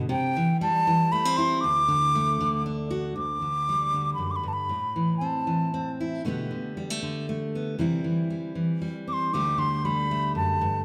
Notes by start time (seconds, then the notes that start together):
0.09 C3 G5
0.36 E3
0.61 G3 A5
0.87 E3
1.12 A3 B5
1.25 C4
1.37 E4 C6
1.61 D2 D6
1.88 D3
2.15 A3
2.40 D3
2.66 D4
2.91 F#4
3.16 D2 D6
3.42 D3
3.69 G3
3.94 D3
4.14 F#2 B5
4.31 D6
4.36 B5
4.43 G2
4.48 A5
4.53 B5
4.69 A2
4.96 E3
5.17 C4 A5
5.47 E3
5.74 C4
6.00 E4
6.25 B2 D3 A3 B3 G4
6.51 D3
6.77 G3
6.90 A3
7.02 D3
7.29 A3
7.55 B3
7.78 C3 E3 G3 C4 E4
8.04 E3
8.30 G3
8.55 E3
8.82 G3
9.07 C4 D6
9.13 C6
9.33 D2 D3 G3 A3 G4 D6
9.58 D3 C6
9.85 G3 B5
10.11 A3
10.35 F#2 A5
10.61 G2